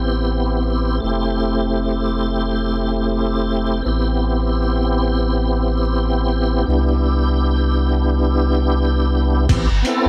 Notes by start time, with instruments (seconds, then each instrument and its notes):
Already playing: sub bass A1, tonewheel organ B3 C4 E4 G4
1.00 sub bass F1, tonewheel organ A3 C4 E4
1.06 tonewheel organ G4
3.82 sub bass A1, tonewheel organ B3 C4 E4
3.88 tonewheel organ G4
6.65 sub bass C2, tonewheel organ B3 D4
6.69 tonewheel organ E4 G4
9.49 sub bass A1, tonewheel organ B3 C4 E4 G4, kick, closed hi-hat, crash
9.71 sub bass G1
9.82 tonewheel organ B3 C4, closed hi-hat
9.86 tonewheel organ E4 A4
10.05 sub bass A1